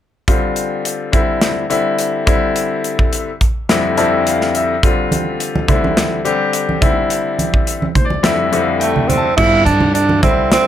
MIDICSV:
0, 0, Header, 1, 5, 480
1, 0, Start_track
1, 0, Tempo, 568182
1, 238, Time_signature, 4, 2, 24, 8
1, 9015, End_track
2, 0, Start_track
2, 0, Title_t, "Grand piano"
2, 0, Program_c, 0, 0
2, 236, Note_on_c, 0, 50, 60
2, 236, Note_on_c, 0, 60, 55
2, 237, Note_on_c, 0, 65, 63
2, 238, Note_on_c, 0, 55, 59
2, 937, Note_off_c, 0, 50, 0
2, 937, Note_off_c, 0, 55, 0
2, 939, Note_off_c, 0, 60, 0
2, 950, Note_on_c, 0, 50, 63
2, 950, Note_on_c, 0, 55, 63
2, 951, Note_on_c, 0, 60, 63
2, 953, Note_on_c, 0, 64, 77
2, 958, Note_off_c, 0, 65, 0
2, 1381, Note_off_c, 0, 50, 0
2, 1381, Note_off_c, 0, 55, 0
2, 1382, Note_off_c, 0, 60, 0
2, 1383, Note_off_c, 0, 64, 0
2, 1433, Note_on_c, 0, 60, 58
2, 1434, Note_on_c, 0, 55, 59
2, 1435, Note_on_c, 0, 50, 65
2, 1435, Note_on_c, 0, 64, 76
2, 1900, Note_off_c, 0, 55, 0
2, 1901, Note_off_c, 0, 50, 0
2, 1901, Note_off_c, 0, 60, 0
2, 1904, Note_off_c, 0, 64, 0
2, 1913, Note_on_c, 0, 55, 67
2, 1914, Note_on_c, 0, 50, 72
2, 1914, Note_on_c, 0, 60, 65
2, 1917, Note_on_c, 0, 64, 81
2, 2771, Note_off_c, 0, 50, 0
2, 2771, Note_off_c, 0, 55, 0
2, 2771, Note_off_c, 0, 60, 0
2, 2773, Note_off_c, 0, 64, 0
2, 3118, Note_on_c, 0, 55, 67
2, 3119, Note_on_c, 0, 41, 69
2, 3119, Note_on_c, 0, 60, 63
2, 3119, Note_on_c, 0, 64, 74
2, 3120, Note_on_c, 0, 50, 62
2, 3332, Note_off_c, 0, 55, 0
2, 3333, Note_off_c, 0, 41, 0
2, 3333, Note_off_c, 0, 50, 0
2, 3333, Note_off_c, 0, 60, 0
2, 3333, Note_off_c, 0, 64, 0
2, 3357, Note_on_c, 0, 41, 71
2, 3357, Note_on_c, 0, 55, 67
2, 3357, Note_on_c, 0, 81, 55
2, 3358, Note_on_c, 0, 60, 64
2, 3359, Note_on_c, 0, 50, 61
2, 3359, Note_on_c, 0, 64, 81
2, 3582, Note_off_c, 0, 81, 0
2, 3605, Note_on_c, 0, 77, 58
2, 3826, Note_off_c, 0, 77, 0
2, 3846, Note_on_c, 0, 76, 59
2, 3999, Note_off_c, 0, 41, 0
2, 3999, Note_off_c, 0, 55, 0
2, 3999, Note_off_c, 0, 60, 0
2, 4000, Note_off_c, 0, 50, 0
2, 4000, Note_off_c, 0, 64, 0
2, 4066, Note_off_c, 0, 76, 0
2, 4084, Note_on_c, 0, 50, 67
2, 4089, Note_on_c, 0, 60, 56
2, 4090, Note_on_c, 0, 55, 58
2, 4092, Note_on_c, 0, 65, 74
2, 4789, Note_off_c, 0, 55, 0
2, 4792, Note_off_c, 0, 50, 0
2, 4792, Note_off_c, 0, 60, 0
2, 4802, Note_on_c, 0, 55, 64
2, 4804, Note_on_c, 0, 50, 75
2, 4804, Note_on_c, 0, 60, 61
2, 4804, Note_on_c, 0, 64, 77
2, 4806, Note_off_c, 0, 65, 0
2, 5228, Note_off_c, 0, 55, 0
2, 5229, Note_off_c, 0, 50, 0
2, 5229, Note_off_c, 0, 60, 0
2, 5229, Note_off_c, 0, 64, 0
2, 5277, Note_on_c, 0, 50, 70
2, 5277, Note_on_c, 0, 60, 66
2, 5278, Note_on_c, 0, 55, 61
2, 5280, Note_on_c, 0, 67, 80
2, 5743, Note_off_c, 0, 50, 0
2, 5743, Note_off_c, 0, 60, 0
2, 5746, Note_off_c, 0, 55, 0
2, 5756, Note_on_c, 0, 50, 71
2, 5756, Note_on_c, 0, 60, 66
2, 5758, Note_on_c, 0, 55, 68
2, 5758, Note_on_c, 0, 64, 81
2, 5760, Note_off_c, 0, 67, 0
2, 6612, Note_off_c, 0, 50, 0
2, 6612, Note_off_c, 0, 60, 0
2, 6613, Note_off_c, 0, 55, 0
2, 6613, Note_off_c, 0, 64, 0
2, 6719, Note_on_c, 0, 72, 58
2, 6794, Note_off_c, 0, 72, 0
2, 6800, Note_on_c, 0, 74, 57
2, 6949, Note_off_c, 0, 74, 0
2, 6953, Note_on_c, 0, 41, 66
2, 6953, Note_on_c, 0, 60, 66
2, 6953, Note_on_c, 0, 76, 58
2, 6954, Note_on_c, 0, 50, 70
2, 6954, Note_on_c, 0, 55, 68
2, 6955, Note_on_c, 0, 64, 81
2, 7170, Note_off_c, 0, 41, 0
2, 7170, Note_off_c, 0, 60, 0
2, 7171, Note_off_c, 0, 50, 0
2, 7171, Note_off_c, 0, 55, 0
2, 7171, Note_off_c, 0, 64, 0
2, 7198, Note_on_c, 0, 41, 71
2, 7200, Note_on_c, 0, 50, 65
2, 7201, Note_on_c, 0, 60, 63
2, 7201, Note_on_c, 0, 64, 75
2, 7202, Note_on_c, 0, 55, 62
2, 7254, Note_off_c, 0, 76, 0
2, 7276, Note_on_c, 0, 77, 58
2, 7427, Note_off_c, 0, 77, 0
2, 7433, Note_on_c, 0, 79, 58
2, 7734, Note_off_c, 0, 79, 0
2, 7751, Note_on_c, 0, 81, 60
2, 7840, Note_off_c, 0, 41, 0
2, 7841, Note_off_c, 0, 50, 0
2, 7841, Note_off_c, 0, 60, 0
2, 7841, Note_off_c, 0, 64, 0
2, 7842, Note_off_c, 0, 55, 0
2, 7904, Note_off_c, 0, 81, 0
2, 7918, Note_on_c, 0, 50, 54
2, 7918, Note_on_c, 0, 55, 51
2, 7918, Note_on_c, 0, 60, 56
2, 7920, Note_on_c, 0, 65, 58
2, 8626, Note_off_c, 0, 60, 0
2, 8627, Note_off_c, 0, 50, 0
2, 8627, Note_off_c, 0, 55, 0
2, 8637, Note_on_c, 0, 64, 66
2, 8639, Note_on_c, 0, 55, 58
2, 8639, Note_on_c, 0, 60, 57
2, 8640, Note_off_c, 0, 65, 0
2, 8640, Note_on_c, 0, 50, 60
2, 9015, Note_off_c, 0, 50, 0
2, 9015, Note_off_c, 0, 55, 0
2, 9015, Note_off_c, 0, 60, 0
2, 9015, Note_off_c, 0, 64, 0
2, 9015, End_track
3, 0, Start_track
3, 0, Title_t, "Tenor saxophone"
3, 0, Program_c, 1, 66
3, 7440, Note_on_c, 1, 57, 74
3, 7672, Note_on_c, 1, 60, 78
3, 7685, Note_off_c, 1, 57, 0
3, 7909, Note_off_c, 1, 60, 0
3, 7914, Note_on_c, 1, 64, 96
3, 8140, Note_off_c, 1, 64, 0
3, 8154, Note_on_c, 1, 62, 84
3, 8380, Note_off_c, 1, 62, 0
3, 8397, Note_on_c, 1, 62, 81
3, 8622, Note_off_c, 1, 62, 0
3, 8644, Note_on_c, 1, 60, 75
3, 8865, Note_off_c, 1, 60, 0
3, 8894, Note_on_c, 1, 60, 91
3, 9015, Note_off_c, 1, 60, 0
3, 9015, End_track
4, 0, Start_track
4, 0, Title_t, "Upright bass"
4, 0, Program_c, 2, 32
4, 7923, Note_on_c, 2, 31, 88
4, 8143, Note_off_c, 2, 31, 0
4, 8159, Note_on_c, 2, 43, 72
4, 8606, Note_off_c, 2, 43, 0
4, 8642, Note_on_c, 2, 36, 76
4, 8862, Note_off_c, 2, 36, 0
4, 9015, End_track
5, 0, Start_track
5, 0, Title_t, "Drums"
5, 235, Note_on_c, 9, 36, 83
5, 238, Note_on_c, 9, 42, 65
5, 320, Note_off_c, 9, 36, 0
5, 322, Note_off_c, 9, 42, 0
5, 474, Note_on_c, 9, 42, 44
5, 558, Note_off_c, 9, 42, 0
5, 720, Note_on_c, 9, 42, 69
5, 805, Note_off_c, 9, 42, 0
5, 957, Note_on_c, 9, 36, 78
5, 958, Note_on_c, 9, 42, 46
5, 1041, Note_off_c, 9, 36, 0
5, 1043, Note_off_c, 9, 42, 0
5, 1195, Note_on_c, 9, 38, 92
5, 1195, Note_on_c, 9, 42, 78
5, 1280, Note_off_c, 9, 38, 0
5, 1280, Note_off_c, 9, 42, 0
5, 1440, Note_on_c, 9, 42, 52
5, 1525, Note_off_c, 9, 42, 0
5, 1677, Note_on_c, 9, 42, 65
5, 1762, Note_off_c, 9, 42, 0
5, 1918, Note_on_c, 9, 42, 49
5, 1919, Note_on_c, 9, 36, 79
5, 2002, Note_off_c, 9, 42, 0
5, 2003, Note_off_c, 9, 36, 0
5, 2161, Note_on_c, 9, 42, 66
5, 2245, Note_off_c, 9, 42, 0
5, 2402, Note_on_c, 9, 42, 48
5, 2487, Note_off_c, 9, 42, 0
5, 2526, Note_on_c, 9, 36, 61
5, 2610, Note_off_c, 9, 36, 0
5, 2641, Note_on_c, 9, 42, 65
5, 2726, Note_off_c, 9, 42, 0
5, 2880, Note_on_c, 9, 42, 43
5, 2881, Note_on_c, 9, 36, 64
5, 2964, Note_off_c, 9, 42, 0
5, 2966, Note_off_c, 9, 36, 0
5, 3121, Note_on_c, 9, 38, 92
5, 3121, Note_on_c, 9, 42, 67
5, 3205, Note_off_c, 9, 38, 0
5, 3205, Note_off_c, 9, 42, 0
5, 3358, Note_on_c, 9, 42, 47
5, 3442, Note_off_c, 9, 42, 0
5, 3605, Note_on_c, 9, 42, 61
5, 3689, Note_off_c, 9, 42, 0
5, 3727, Note_on_c, 9, 38, 26
5, 3812, Note_off_c, 9, 38, 0
5, 3842, Note_on_c, 9, 42, 47
5, 3926, Note_off_c, 9, 42, 0
5, 4082, Note_on_c, 9, 36, 91
5, 4084, Note_on_c, 9, 42, 65
5, 4167, Note_off_c, 9, 36, 0
5, 4168, Note_off_c, 9, 42, 0
5, 4321, Note_on_c, 9, 63, 60
5, 4325, Note_on_c, 9, 42, 51
5, 4406, Note_off_c, 9, 63, 0
5, 4410, Note_off_c, 9, 42, 0
5, 4564, Note_on_c, 9, 42, 64
5, 4649, Note_off_c, 9, 42, 0
5, 4693, Note_on_c, 9, 63, 65
5, 4777, Note_off_c, 9, 63, 0
5, 4802, Note_on_c, 9, 36, 83
5, 4803, Note_on_c, 9, 64, 63
5, 4807, Note_on_c, 9, 42, 49
5, 4887, Note_off_c, 9, 36, 0
5, 4887, Note_off_c, 9, 64, 0
5, 4891, Note_off_c, 9, 42, 0
5, 4936, Note_on_c, 9, 63, 62
5, 5021, Note_off_c, 9, 63, 0
5, 5044, Note_on_c, 9, 38, 99
5, 5044, Note_on_c, 9, 42, 81
5, 5046, Note_on_c, 9, 63, 53
5, 5129, Note_off_c, 9, 38, 0
5, 5129, Note_off_c, 9, 42, 0
5, 5130, Note_off_c, 9, 63, 0
5, 5283, Note_on_c, 9, 42, 50
5, 5368, Note_off_c, 9, 42, 0
5, 5520, Note_on_c, 9, 42, 75
5, 5604, Note_off_c, 9, 42, 0
5, 5651, Note_on_c, 9, 63, 52
5, 5736, Note_off_c, 9, 63, 0
5, 5760, Note_on_c, 9, 64, 56
5, 5761, Note_on_c, 9, 36, 87
5, 5763, Note_on_c, 9, 42, 56
5, 5845, Note_off_c, 9, 36, 0
5, 5845, Note_off_c, 9, 64, 0
5, 5848, Note_off_c, 9, 42, 0
5, 6000, Note_on_c, 9, 42, 71
5, 6085, Note_off_c, 9, 42, 0
5, 6241, Note_on_c, 9, 63, 53
5, 6245, Note_on_c, 9, 42, 49
5, 6326, Note_off_c, 9, 63, 0
5, 6329, Note_off_c, 9, 42, 0
5, 6367, Note_on_c, 9, 36, 61
5, 6452, Note_off_c, 9, 36, 0
5, 6481, Note_on_c, 9, 42, 70
5, 6565, Note_off_c, 9, 42, 0
5, 6608, Note_on_c, 9, 63, 53
5, 6693, Note_off_c, 9, 63, 0
5, 6720, Note_on_c, 9, 36, 68
5, 6721, Note_on_c, 9, 42, 45
5, 6722, Note_on_c, 9, 64, 55
5, 6804, Note_off_c, 9, 36, 0
5, 6806, Note_off_c, 9, 42, 0
5, 6806, Note_off_c, 9, 64, 0
5, 6846, Note_on_c, 9, 63, 55
5, 6930, Note_off_c, 9, 63, 0
5, 6959, Note_on_c, 9, 38, 101
5, 6959, Note_on_c, 9, 42, 75
5, 6959, Note_on_c, 9, 63, 49
5, 7043, Note_off_c, 9, 63, 0
5, 7044, Note_off_c, 9, 38, 0
5, 7044, Note_off_c, 9, 42, 0
5, 7203, Note_on_c, 9, 42, 47
5, 7288, Note_off_c, 9, 42, 0
5, 7443, Note_on_c, 9, 42, 62
5, 7528, Note_off_c, 9, 42, 0
5, 7568, Note_on_c, 9, 64, 54
5, 7653, Note_off_c, 9, 64, 0
5, 7683, Note_on_c, 9, 64, 64
5, 7685, Note_on_c, 9, 42, 50
5, 7768, Note_off_c, 9, 64, 0
5, 7770, Note_off_c, 9, 42, 0
5, 7922, Note_on_c, 9, 36, 95
5, 7923, Note_on_c, 9, 49, 76
5, 8006, Note_off_c, 9, 36, 0
5, 8007, Note_off_c, 9, 49, 0
5, 8162, Note_on_c, 9, 63, 57
5, 8165, Note_on_c, 9, 42, 50
5, 8246, Note_off_c, 9, 63, 0
5, 8249, Note_off_c, 9, 42, 0
5, 8283, Note_on_c, 9, 63, 58
5, 8283, Note_on_c, 9, 64, 58
5, 8367, Note_off_c, 9, 63, 0
5, 8367, Note_off_c, 9, 64, 0
5, 8406, Note_on_c, 9, 42, 72
5, 8490, Note_off_c, 9, 42, 0
5, 8525, Note_on_c, 9, 63, 59
5, 8610, Note_off_c, 9, 63, 0
5, 8642, Note_on_c, 9, 36, 82
5, 8642, Note_on_c, 9, 42, 53
5, 8645, Note_on_c, 9, 64, 53
5, 8726, Note_off_c, 9, 36, 0
5, 8726, Note_off_c, 9, 42, 0
5, 8729, Note_off_c, 9, 64, 0
5, 8884, Note_on_c, 9, 38, 102
5, 8884, Note_on_c, 9, 42, 80
5, 8968, Note_off_c, 9, 38, 0
5, 8968, Note_off_c, 9, 42, 0
5, 9015, End_track
0, 0, End_of_file